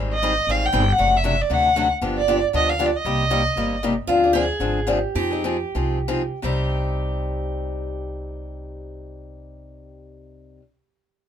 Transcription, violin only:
0.13 0.52 D#5 medium
0.51 0.67 F5 medium
0.66 0.93 G5 medium
0.92 1.18 F#5 loud
1.17 1.27 E5 medium
1.27 1.43 E5 medium
1.41 1.55 D5 medium
1.53 1.92 F#5 medium
2.18 2.41 D5 loud
2.56 2.71 D#5 loud
2.70 2.87 F5 medium
2.86 2.97 D5 medium
2.96 3.83 D#5 medium

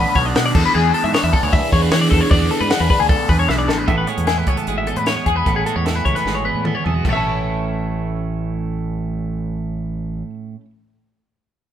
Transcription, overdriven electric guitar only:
0.00 0.36 F#3 medium
0.00 0.17 B3 medium
0.00 0.16 D4 medium
0.00 0.15 F#4 medium
0.15 0.36 B3 medium
0.15 0.37 D4 medium
0.15 0.38 F#4 medium
0.35 0.54 B2 medium
0.35 0.57 F#3 loud
0.35 0.57 B3 loud
0.35 0.56 D4 loud
0.35 0.55 F#4 loud
0.55 0.74 E3 medium
0.55 0.75 B3 medium
0.55 0.76 D4 medium
0.55 0.76 G#4 medium
0.75 1.13 E3 loud
0.75 1.14 B3 loud
0.75 1.15 D4 loud
0.75 1.15 G#4 loud
1.13 1.77 E3 medium
1.13 1.36 B3 medium
1.13 1.34 D4 medium
1.13 1.32 G#4 medium
1.33 1.75 B3 medium
1.33 1.73 D4 medium
1.33 1.71 G#4 medium
1.72 1.93 B3 medium
1.72 1.93 D4 medium
1.72 1.94 G#4 medium
1.92 2.30 E3 loud
1.92 2.31 B3 loud
1.92 2.32 D4 loud
1.92 2.33 G#4 loud
2.31 2.69 E3 loud
2.31 2.70 B3 loud
2.31 2.71 D4 loud
2.31 2.72 G#4 loud
2.70 3.10 E3 medium
2.70 2.91 B3 medium
2.70 2.90 D4 medium
2.70 2.89 G#4 medium
2.90 3.30 B3 medium
2.90 3.29 D4 medium
2.90 3.27 G#4 medium
3.29 3.48 B3 medium
3.29 3.49 D4 medium
3.29 3.50 G#4 medium
3.48 3.87 E3 loud
3.48 3.87 B3 loud
3.48 3.88 D4 loud
3.48 3.88 G#4 loud

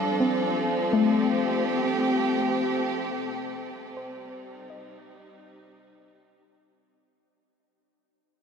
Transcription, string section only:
0.00 3.15 F3 medium
0.00 0.83 D4 medium
0.00 4.70 A4 medium
0.12 4.67 C4 medium
1.02 4.70 G4 medium
3.14 7.02 C3 medium
3.98 7.02 G3 medium
4.54 7.02 D#4 medium

